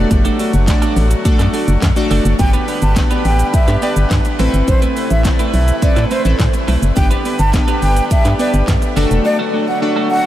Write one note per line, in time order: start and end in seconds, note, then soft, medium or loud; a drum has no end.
0.00 2.35 D3 medium
0.00 2.37 F#3 medium
0.00 0.51 A3 loud
0.00 2.37 A3 medium
0.00 0.51 D4 medium
0.00 0.51 F#4 medium
0.00 2.37 F#4 medium
0.00 0.51 A4 medium
0.00 0.51 D5 loud
0.11 0.29 F#1 loud
0.11 muted clean electric guitar stroke soft
0.11 kick loud
0.11 closed hi-hat medium
0.11 shaker medium
0.25 0.38 A3 medium
0.25 0.38 D4 medium
0.25 0.39 F#4 medium
0.25 0.39 A4 medium
0.25 closed hi-hat medium
0.25 shaker medium
0.39 0.51 A3 medium
0.39 0.52 D4 medium
0.39 0.52 F#4 medium
0.39 0.52 A4 medium
0.39 open hi-hat medium
0.39 shaker medium
0.53 0.72 F#1 loud
0.53 muted clean electric guitar stroke medium
0.53 closed hi-hat medium
0.53 shaker medium
0.68 1.05 A3 medium
0.68 1.05 D4 medium
0.68 1.05 F#4 medium
0.68 1.05 A4 medium
0.68 1.05 D5 loud
0.68 muted clean electric guitar stroke soft
0.68 kick loud
0.68 snare medium
0.68 clap loud
0.68 closed hi-hat medium
0.68 shaker medium
0.82 0.95 A3 medium
0.82 0.95 D4 medium
0.82 0.96 F#4 medium
0.82 0.96 A4 loud
0.82 closed hi-hat medium
0.82 shaker medium
0.96 1.14 A1 loud
0.96 muted clean electric guitar stroke soft
0.96 open hi-hat medium
0.96 shaker medium
1.11 muted clean electric guitar stroke medium
1.11 closed hi-hat medium
1.11 shaker medium
1.25 1.31 F#2 soft
1.25 1.71 A3 medium
1.25 1.71 D4 medium
1.25 1.71 F#4 medium
1.25 1.71 A4 medium
1.25 1.72 D5 loud
1.25 muted clean electric guitar stroke soft
1.25 kick loud
1.25 closed hi-hat medium
1.25 shaker medium
1.39 1.48 F#2 loud
1.39 1.52 A3 soft
1.39 1.52 D4 medium
1.39 1.52 F#4 medium
1.39 1.51 A4 medium
1.39 clap medium
1.39 closed hi-hat medium
1.39 shaker medium
1.53 1.69 A3 medium
1.53 1.67 D4 medium
1.53 1.67 F#4 medium
1.53 1.66 A4 loud
1.53 open hi-hat medium
1.53 shaker medium
1.68 1.77 F#1 loud
1.68 muted clean electric guitar stroke medium
1.68 closed hi-hat medium
1.68 shaker medium
1.82 1.91 F#2 loud
1.82 kick loud
1.82 snare medium
1.82 clap loud
1.82 closed hi-hat medium
1.82 shaker medium
1.96 2.33 A3 loud
1.96 2.34 D4 medium
1.96 2.34 F#4 medium
1.96 2.34 A4 medium
1.96 2.34 D5 loud
1.96 muted clean electric guitar stroke soft
1.96 closed hi-hat medium
1.96 shaker medium
2.10 2.20 F#1 loud
2.10 2.26 A3 medium
2.10 2.24 D4 medium
2.10 2.24 F#4 medium
2.10 2.24 A4 loud
2.10 open hi-hat medium
2.10 shaker medium
2.25 2.34 F#1 medium
2.25 muted clean electric guitar stroke soft
2.25 closed hi-hat medium
2.25 shaker medium
2.39 2.57 G1 loud
2.39 4.37 D3 medium
2.39 4.37 G3 medium
2.39 2.76 B3 medium
2.39 2.76 D4 medium
2.39 4.37 G4 medium
2.39 2.76 G4 medium
2.39 8.92 B4 medium
2.39 2.77 B4 medium
2.39 2.50 G5 loud
2.39 muted clean electric guitar stroke soft
2.39 kick loud
2.39 closed hi-hat medium
2.39 shaker medium
2.53 2.66 B3 medium
2.53 2.67 D4 medium
2.53 2.67 G4 medium
2.53 2.68 B4 medium
2.53 closed hi-hat medium
2.53 shaker medium
2.68 2.80 B3 medium
2.68 2.80 D4 medium
2.68 2.80 G4 medium
2.68 2.80 B4 medium
2.68 open hi-hat medium
2.68 shaker medium
2.82 3.00 G1 medium
2.82 2.93 A5 medium
2.82 muted clean electric guitar stroke soft
2.82 closed hi-hat medium
2.82 shaker medium
2.96 3.52 B3 medium
2.96 3.52 D4 medium
2.96 3.52 G4 medium
2.96 3.52 B4 loud
2.96 muted clean electric guitar stroke soft
2.96 kick loud
2.96 snare medium
2.96 clap loud
2.96 closed hi-hat medium
2.96 shaker medium
3.10 3.24 B3 medium
3.10 3.24 D4 medium
3.10 3.24 G4 medium
3.10 3.25 B4 medium
3.10 closed hi-hat medium
3.10 shaker medium
3.25 3.43 A1 loud
3.25 3.47 G5 medium
3.25 muted clean electric guitar stroke soft
3.25 open hi-hat medium
3.25 shaker soft
3.39 muted clean electric guitar stroke medium
3.39 closed hi-hat medium
3.39 shaker medium
3.53 3.59 G2 soft
3.53 3.76 E5 medium
3.53 muted clean electric guitar stroke soft
3.53 kick loud
3.53 closed hi-hat medium
3.53 shaker medium
3.68 3.77 G2 loud
3.68 3.80 B3 soft
3.68 3.80 D4 medium
3.68 3.80 G4 medium
3.68 3.80 B4 medium
3.68 clap medium
3.68 closed hi-hat medium
3.68 shaker medium
3.82 3.98 B3 medium
3.82 4.38 B3 medium
3.82 4.38 D4 medium
3.82 3.96 D4 medium
3.82 4.38 G4 medium
3.82 3.96 G4 medium
3.82 4.38 B4 medium
3.82 3.95 B4 loud
3.82 3.93 D5 medium
3.82 open hi-hat medium
3.82 shaker medium
3.96 4.05 G1 medium
3.96 muted clean electric guitar stroke soft
3.96 closed hi-hat medium
3.96 shaker medium
4.11 4.20 G2 loud
4.11 kick loud
4.11 snare medium
4.11 clap loud
4.11 closed hi-hat medium
4.11 shaker medium
4.25 muted clean electric guitar stroke medium
4.25 closed hi-hat medium
4.25 shaker medium
4.39 4.48 A1 loud
4.39 6.94 C3 medium
4.39 4.55 A3 medium
4.39 6.94 A3 medium
4.39 5.08 C4 loud
4.39 4.53 C4 medium
4.39 5.08 E4 medium
4.39 6.94 E4 medium
4.39 4.53 E4 medium
4.39 5.08 A4 medium
4.39 5.08 B4 loud
4.39 4.52 B4 loud
4.39 open hi-hat medium
4.39 shaker soft
4.53 4.63 G1 medium
4.53 muted clean electric guitar stroke soft
4.53 closed hi-hat medium
4.53 shaker medium
4.68 4.86 A1 loud
4.68 4.79 C5 loud
4.68 muted clean electric guitar stroke soft
4.68 kick loud
4.68 closed hi-hat medium
4.68 shaker medium
4.82 4.95 A3 medium
4.82 4.96 C4 medium
4.82 4.96 E4 medium
4.82 4.96 B4 medium
4.82 closed hi-hat medium
4.82 shaker medium
4.96 5.09 A3 medium
4.96 5.09 C4 medium
4.96 5.09 E4 medium
4.96 5.09 B4 medium
4.96 open hi-hat medium
4.96 shaker medium
5.10 5.29 A1 medium
5.10 5.22 E5 medium
5.10 closed hi-hat soft
5.10 shaker medium
5.25 5.62 C4 medium
5.25 5.62 E4 medium
5.25 5.62 A4 medium
5.25 5.62 D5 medium
5.25 muted clean electric guitar stroke soft
5.25 kick loud
5.25 snare medium
5.25 clap loud
5.25 closed hi-hat medium
5.25 shaker medium
5.39 5.52 A3 medium
5.39 5.53 C4 medium
5.39 5.53 E4 medium
5.39 5.53 B4 loud
5.39 closed hi-hat medium
5.39 shaker medium
5.53 5.72 B1 loud
5.53 5.76 E5 medium
5.53 muted clean electric guitar stroke soft
5.53 open hi-hat medium
5.53 shaker medium
5.68 muted clean electric guitar stroke soft
5.68 closed hi-hat medium
5.68 shaker medium
5.82 5.88 A2 soft
5.82 6.10 C4 medium
5.82 6.10 E4 medium
5.82 6.10 A4 medium
5.82 6.10 B4 medium
5.82 6.05 D5 medium
5.82 muted clean electric guitar stroke soft
5.82 kick loud
5.82 closed hi-hat medium
5.82 shaker medium
5.96 6.05 A2 loud
5.96 6.09 A3 medium
5.96 6.09 C4 medium
5.96 6.09 E4 medium
5.96 6.08 B4 medium
5.96 clap medium
5.96 closed hi-hat medium
5.96 shaker medium
6.11 6.26 A3 medium
6.11 6.25 C4 loud
6.11 6.24 E4 loud
6.11 6.24 B4 loud
6.11 6.22 C5 medium
6.11 open hi-hat medium
6.11 shaker medium
6.25 6.34 A1 medium
6.25 6.71 C4 medium
6.25 6.71 E4 medium
6.25 6.71 A4 medium
6.25 6.72 B4 medium
6.25 muted clean electric guitar stroke soft
6.25 closed hi-hat medium
6.25 shaker medium
6.39 6.48 A2 loud
6.39 kick loud
6.39 snare medium
6.39 clap loud
6.39 closed hi-hat medium
6.39 shaker medium
6.54 muted clean electric guitar stroke medium
6.54 closed hi-hat medium
6.54 shaker medium
6.68 6.77 B1 medium
6.68 6.83 A3 medium
6.68 6.82 C4 medium
6.68 6.81 E4 medium
6.68 6.81 B4 loud
6.68 open hi-hat medium
6.68 shaker medium
6.82 6.91 F#1 medium
6.82 muted clean electric guitar stroke medium
6.82 closed hi-hat medium
6.82 shaker medium
6.96 7.15 G1 loud
6.96 10.26 D3 medium
6.96 8.95 G3 medium
6.96 7.33 B3 medium
6.96 7.34 D4 medium
6.96 7.34 G4 medium
6.96 8.95 G4 medium
6.96 7.34 B4 medium
6.96 7.08 G5 loud
6.96 muted clean electric guitar stroke soft
6.96 kick loud
6.96 closed hi-hat medium
6.96 shaker medium
7.11 7.24 B3 medium
7.11 7.24 D4 medium
7.11 7.24 G4 medium
7.11 7.25 B4 medium
7.11 closed hi-hat medium
7.11 shaker medium
7.25 7.37 B3 medium
7.25 7.37 D4 medium
7.25 7.37 G4 medium
7.25 7.38 B4 medium
7.25 open hi-hat medium
7.25 shaker medium
7.39 7.57 G1 loud
7.39 7.50 A5 medium
7.39 muted clean electric guitar stroke medium
7.39 closed hi-hat medium
7.39 shaker medium
7.53 8.09 B3 medium
7.53 8.09 D4 medium
7.53 8.09 G4 medium
7.53 8.09 B4 loud
7.53 muted clean electric guitar stroke soft
7.53 kick loud
7.53 snare medium
7.53 clap loud
7.53 closed hi-hat medium
7.53 shaker medium
7.68 7.81 B3 medium
7.68 7.81 D4 medium
7.68 7.81 G4 medium
7.68 7.82 B4 medium
7.68 closed hi-hat medium
7.68 shaker medium
7.82 8.00 G1 medium
7.82 8.04 G5 medium
7.82 open hi-hat medium
7.82 shaker medium
7.96 muted clean electric guitar stroke medium
7.96 closed hi-hat medium
7.96 shaker medium
8.11 8.17 G2 soft
8.11 8.33 E5 medium
8.11 muted clean electric guitar stroke soft
8.11 kick loud
8.11 closed hi-hat medium
8.11 shaker medium
8.25 8.34 G2 loud
8.25 8.38 B3 medium
8.25 8.37 D4 medium
8.25 8.37 G4 medium
8.25 8.37 B4 medium
8.25 clap medium
8.25 closed hi-hat medium
8.25 shaker medium
8.39 8.55 B3 medium
8.39 8.95 B3 medium
8.39 8.95 D4 medium
8.39 8.53 D4 loud
8.39 8.95 G4 medium
8.39 8.53 G4 medium
8.39 8.95 B4 medium
8.39 8.52 B4 medium
8.39 8.50 D5 medium
8.39 open hi-hat medium
8.39 shaker medium
8.53 8.63 G1 medium
8.53 muted clean electric guitar stroke soft
8.53 closed hi-hat medium
8.53 shaker medium
8.68 8.77 G2 loud
8.68 kick loud
8.68 snare medium
8.68 clap loud
8.68 closed hi-hat medium
8.68 shaker medium
8.82 muted clean electric guitar stroke medium
8.82 closed hi-hat medium
8.82 shaker medium
8.96 9.06 F#1 loud
8.96 10.26 F#3 medium
8.96 9.12 A3 medium
8.96 9.65 A3 loud
8.96 10.26 A3 medium
8.96 9.65 D4 medium
8.96 9.10 D4 medium
8.96 10.26 F#4 medium
8.96 9.65 F#4 medium
8.96 9.10 F#4 medium
8.96 9.65 A4 loud
8.96 9.09 A4 loud
8.96 open hi-hat medium
8.96 shaker medium
9.11 9.20 E1 medium
9.11 muted clean electric guitar stroke medium
9.11 closed hi-hat medium
9.11 shaker medium
9.25 9.36 D5 loud
9.25 muted clean electric guitar stroke soft
9.39 9.52 A3 medium
9.39 9.53 D4 medium
9.39 9.53 F#4 medium
9.39 9.53 A4 medium
9.53 9.66 A3 medium
9.53 9.66 D4 medium
9.53 9.66 F#4 medium
9.53 9.66 A4 medium
9.68 9.79 F#5 medium
9.68 muted clean electric guitar stroke soft
9.82 10.19 A3 medium
9.82 10.19 D4 medium
9.82 10.19 F#4 medium
9.82 10.19 A4 medium
9.82 muted clean electric guitar stroke soft
9.96 10.09 A3 medium
9.96 10.10 D4 medium
9.96 10.10 F#4 medium
9.96 10.10 A4 medium
10.10 10.26 F#5 medium
10.10 muted clean electric guitar stroke soft